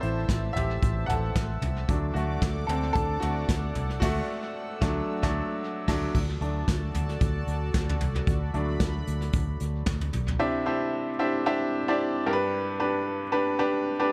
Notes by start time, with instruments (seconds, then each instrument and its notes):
Already playing: upright piano E3 A3 C4 E4 F#4 D5, analog synth pad C5 E5 A5 E6
0.00 fingered electric bass A1, upright piano E4 C5, closed hi-hat
0.29 fingered electric bass A1, kick, snare, closed hi-hat
0.53 fingered electric bass A1, upright piano G4 E5, closed hi-hat, floor tom
0.82 fingered electric bass A1, kick, closed hi-hat
1.06 fingered electric bass A1, upright piano A4 F#5, closed hi-hat, floor tom
1.35 fingered electric bass A1, kick, snare, closed hi-hat
1.62 fingered electric bass C2, closed hi-hat, floor tom
1.87 fingered electric bass D2, upright piano F#3 A3 D4, analog synth pad A4 D5 F#5 D6, kick, closed hi-hat
2.14 fingered electric bass D2, upright piano A3 F#4, closed hi-hat
2.42 fingered electric bass D2, kick, snare, closed hi-hat
2.67 fingered electric bass D2, upright piano C4 A4, closed hi-hat, floor tom
2.93 fingered electric bass D2, upright piano D4 A4, kick, closed hi-hat
3.20 fingered electric bass D2, upright piano A3 F#4, closed hi-hat, floor tom
3.49 fingered electric bass D2, kick, snare, closed hi-hat
3.75 fingered electric bass C2, closed hi-hat, floor tom
3.90 closed hi-hat
4.00 fingered electric bass D2, upright piano A3 F#4, analog synth pad E6, kick, snare, crash
4.81 fingered electric bass D2, upright piano F#3 A3 D4, kick, snare
5.23 fingered electric bass D2, upright piano F#3 A3 D4, kick, snare
5.88 fingered electric bass D2, upright piano F#3 A3 D4, kick, snare, crash
6.15 fingered electric bass D2, analog synth pad F#4 A4 D5 A5, kick, crash
6.40 fingered electric bass D2, upright piano F#3 A3 D4, closed hi-hat
6.68 fingered electric bass D2, kick, snare, closed hi-hat
6.95 fingered electric bass D2, closed hi-hat, floor tom
7.09 closed hi-hat
7.21 fingered electric bass D2, kick, closed hi-hat
7.47 fingered electric bass D2, closed hi-hat
7.74 fingered electric bass D2, kick, snare, closed hi-hat
7.89 floor tom
8.00 fingered electric bass C2, closed hi-hat, floor tom
8.16 floor tom
8.27 fingered electric bass D2, analog synth pad B5, kick, closed hi-hat
8.54 fingered electric bass D2, upright piano F#3 A3 D4, closed hi-hat
8.80 fingered electric bass D2, kick, snare, closed hi-hat
9.07 fingered electric bass D2, closed hi-hat
9.22 closed hi-hat
9.33 fingered electric bass D2, kick, closed hi-hat
9.60 fingered electric bass D2, closed hi-hat
9.86 fingered electric bass D2, kick, snare, closed hi-hat
10.01 closed hi-hat, floor tom
10.13 fingered electric bass B1, closed hi-hat, floor tom
10.28 floor tom
10.39 upright piano C3 D4 E4 G4 C5 E5
10.66 upright piano D4 E4 G4 C5 E5
11.19 upright piano D4 E4 G4 C5 E5
11.46 upright piano D4 E4 G4 C5 E5
11.88 upright piano D4 E4 G4 C5 D5
12.26 upright piano G2 D4 G4 A#4
12.33 upright piano B4
12.80 upright piano D4 G4 B4
13.32 upright piano D4 G4 B4
13.59 upright piano D4 G4 B4
14.00 upright piano D4 G4 B4